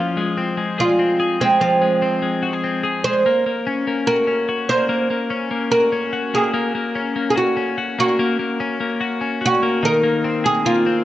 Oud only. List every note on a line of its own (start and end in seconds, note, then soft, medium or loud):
0.00 0.79 F4 loud
0.80 1.37 F4 medium
1.41 1.60 C4 medium
1.61 2.80 C4 medium
3.04 4.07 C5 loud
4.07 4.69 A#4 loud
4.69 5.68 C5 loud
5.72 6.34 A#4 loud
6.35 7.29 G#4 loud
7.30 7.37 G#4 medium
7.37 7.75 F#4 medium
8.00 9.39 F#4 medium
9.46 9.85 F#4 loud
9.85 10.42 A#4 loud
10.46 10.65 G#4 loud
10.66 11.04 F4 medium